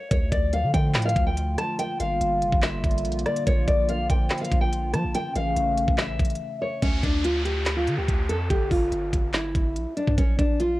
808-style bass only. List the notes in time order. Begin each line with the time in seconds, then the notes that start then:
0.11 D2
0.32 D2
0.64 D3
0.74 D3
0.95 A2
1.16 D2
2.00 G1
2.21 G1
2.42 F1
2.52 G1
2.84 G1
3.05 A#1
3.47 A#1
3.68 A#1
4.10 A#1
4.52 A#1
4.94 F3
5.04 A#1
5.36 A1
5.56 A1
5.88 A1
6.19 A1
6.82 D2
7.03 D2
7.87 D3
7.98 D2
8.08 D2
8.29 F2
8.50 G1
8.71 G1
8.92 G1
9.13 G1
9.55 G1
9.76 A#1
10.08 G2
10.18 A#1
10.39 A#1